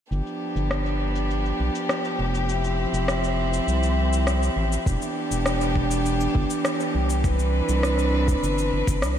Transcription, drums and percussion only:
0.12 cabasa soft
0.27 cabasa soft
0.56 cabasa medium
0.71 cross-stick medium
0.71 cabasa soft
0.86 cabasa soft
1.16 cabasa soft
1.30 cabasa soft
1.45 cabasa soft
1.75 cabasa medium
1.89 cross-stick medium
1.89 cabasa soft
2.05 cabasa soft
2.35 cabasa medium
2.49 cabasa soft
2.64 cabasa soft
2.94 cabasa medium
3.08 cross-stick medium
3.08 cabasa soft
3.24 cabasa soft
3.53 cabasa medium
3.68 cabasa soft
3.83 cabasa soft
4.13 cabasa medium
4.27 cross-stick medium
4.27 cabasa soft
4.43 cabasa soft
4.72 cabasa medium
4.86 kick loud
4.86 cabasa soft
5.02 cabasa soft
5.32 cabasa medium
5.46 cross-stick medium
5.46 cabasa soft
5.61 cabasa soft
5.75 kick medium
5.91 cabasa medium
6.06 cabasa soft
6.21 cabasa soft
6.35 kick medium
6.50 cabasa medium
6.65 cross-stick medium
6.65 cabasa medium
6.80 cabasa soft
7.10 cabasa medium
7.24 kick loud
7.24 cabasa soft
7.39 cabasa soft
7.69 cabasa medium
7.83 cross-stick medium
7.83 cabasa soft
7.99 cabasa soft
8.28 kick loud
8.28 cabasa medium
8.44 cabasa medium
8.58 cabasa soft
8.87 kick loud
8.87 cabasa medium
9.02 cross-stick medium
9.02 cabasa soft

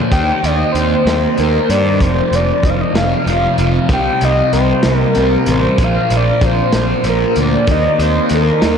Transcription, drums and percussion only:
0.12 kick loud
0.12 closed hi-hat medium
0.44 closed hi-hat medium
0.75 closed hi-hat medium
1.07 snare medium
1.07 closed hi-hat medium
1.37 closed hi-hat medium
1.70 closed hi-hat medium
2.01 kick loud
2.01 closed hi-hat medium
2.33 closed hi-hat medium
2.63 kick medium
2.63 closed hi-hat medium
2.95 snare loud
2.95 closed hi-hat medium
3.27 closed hi-hat soft
3.58 closed hi-hat medium
3.89 kick loud
3.89 closed hi-hat medium
4.21 closed hi-hat medium
4.53 closed hi-hat medium
4.83 snare loud
4.83 closed hi-hat medium
5.15 closed hi-hat medium
5.46 closed hi-hat medium
5.78 kick medium
5.78 closed hi-hat medium
6.10 closed hi-hat medium
6.41 kick medium
6.41 closed hi-hat medium
6.72 snare loud
6.72 closed hi-hat medium
7.04 closed hi-hat medium
7.36 closed hi-hat medium
7.67 kick loud
7.67 closed hi-hat medium
8.00 closed hi-hat medium
8.29 closed hi-hat medium
8.62 snare loud
8.62 closed hi-hat medium

